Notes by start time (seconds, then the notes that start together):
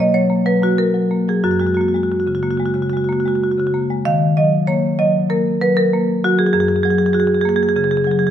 Already playing: B2
0.00 A#3 D#5
0.14 F#3 C#5
0.30 A#3
0.46 F#3 B4
0.62 A#3 F#4
0.78 A#4
0.94 F#3
1.11 A#3
1.28 F#3 G#4
1.44 F#2 F#4
1.51 F#4
1.59 G#3 F#4
1.67 F#4
1.74 A#3 F#4
1.81 F#4
1.88 F#4
1.94 G#3 F#4
2.03 F#4
2.12 F#4
2.20 F#4
2.27 C#3 F#4
2.35 F#4
2.43 A#3 F#4
2.50 F#4
2.57 G#3 F#4
2.66 F#4
2.74 C#3 F#4
2.82 F#4
2.89 G#3 F#4
2.97 F#4
3.04 F#4
3.09 A#3 F#4
3.20 F#4
3.25 G#3 F#4
3.35 F#4
3.43 F#4
3.51 F#4
3.58 C#3 F#4
3.67 F#4
3.74 A#3
3.90 G#3
4.05 D#3 F5
4.37 F#3 D#5
4.67 A#3 C#5
4.99 F#3 D#5
5.30 A#3 A#4
5.61 F#3 B4
5.77 A#4
5.93 A#3
6.24 F#3 F#4
6.39 G#4
6.46 G#4
6.53 F#2 G#4
6.60 G#4
6.68 G#4
6.76 G#4
6.83 F#3 G#4
6.91 G#4
6.98 G#4
7.06 G#4
7.13 F#4 G#4
7.20 G#4
7.27 G#4
7.35 G#4
7.41 A#3 G#4
7.49 G#4
7.56 G#4
7.63 G#4
7.69 G#4
7.76 C#3 G#4
7.84 G#4
7.91 G#4
7.97 G#4
8.04 F#3 G#4
8.11 G#4
8.19 G#4
8.27 G#4